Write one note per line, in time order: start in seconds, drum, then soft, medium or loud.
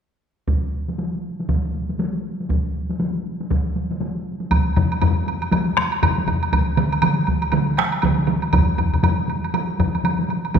0.48 taiko medium
0.48 taiko high soft
0.88 taiko high soft
0.98 taiko high soft
1.40 taiko high soft
1.49 taiko medium
1.49 taiko high medium
1.75 taiko high soft
1.89 taiko high soft
1.99 taiko high medium
2.40 taiko high soft
2.49 taiko medium
2.49 taiko high soft
2.89 taiko high soft
3.00 taiko high medium
3.40 taiko high soft
3.51 taiko medium
3.51 taiko high medium
3.76 taiko high soft
3.91 taiko high soft
4.00 taiko high medium
4.40 taiko high soft
4.51 taiko loud
4.51 taiko high medium
4.51 high woodblock soft
4.66 taiko high soft
4.76 taiko low-mid medium
4.76 taiko high soft
4.76 high woodblock soft
4.91 taiko high soft
4.91 high woodblock soft
5.02 taiko low-mid medium
5.02 taiko high medium
5.02 high woodblock medium
5.17 taiko high soft
5.27 taiko high soft
5.27 high woodblock soft
5.42 taiko high soft
5.42 high woodblock soft
5.52 taiko low-mid medium
5.52 taiko high medium
5.52 high woodblock soft
5.68 taiko high soft
5.77 taiko rim medium
5.77 taiko high soft
5.77 high woodblock soft
5.92 taiko high soft
5.92 high woodblock soft
6.03 taiko low-mid medium
6.03 taiko high medium
6.03 high woodblock medium
6.18 taiko high soft
6.27 taiko low-mid medium
6.27 high woodblock soft
6.43 taiko high soft
6.43 high woodblock soft
6.53 taiko medium
6.53 taiko high medium
6.53 high woodblock medium
6.69 taiko high soft
6.77 taiko mid medium
6.77 taiko high soft
6.77 high woodblock soft
6.92 taiko high soft
6.92 high woodblock soft
7.02 taiko mid medium
7.02 taiko high medium
7.02 high woodblock medium
7.18 taiko high soft
7.27 taiko medium
7.27 taiko high soft
7.27 high woodblock soft
7.42 taiko high soft
7.42 high woodblock soft
7.52 taiko mid medium
7.52 taiko high medium
7.52 high woodblock soft
7.69 taiko high soft
7.77 taiko rim medium
7.77 taiko high soft
7.77 high woodblock soft
7.92 taiko high soft
7.92 high woodblock soft
8.02 taiko medium
8.02 taiko mid medium
8.02 taiko high medium
8.02 high woodblock soft
8.19 taiko high soft
8.27 taiko mid medium
8.27 taiko high soft
8.27 high woodblock soft
8.42 taiko high soft
8.42 high woodblock soft
8.53 taiko loud
8.53 taiko low-mid medium
8.53 taiko high medium
8.53 high woodblock medium
8.69 taiko high soft
8.78 taiko low-mid medium
8.78 taiko high soft
8.78 high woodblock soft
8.94 taiko low-mid medium
8.94 taiko high soft
8.94 high woodblock soft
9.03 taiko low-mid medium
9.03 taiko high medium
9.03 high woodblock medium
9.19 taiko high soft
9.29 taiko high soft
9.29 high woodblock soft
9.44 taiko high soft
9.44 high woodblock soft
9.54 taiko high medium
9.54 high woodblock soft
9.69 taiko high soft
9.79 taiko low-mid medium
9.79 taiko high soft
9.79 high woodblock soft
9.94 taiko high soft
9.94 high woodblock soft
10.04 taiko high medium
10.04 high woodblock soft
10.19 taiko high soft
10.29 taiko high medium
10.29 high woodblock soft
10.45 taiko high soft
10.45 high woodblock soft
10.54 taiko medium
10.54 taiko low-mid medium
10.54 taiko mid medium
10.54 taiko high medium
10.54 high woodblock soft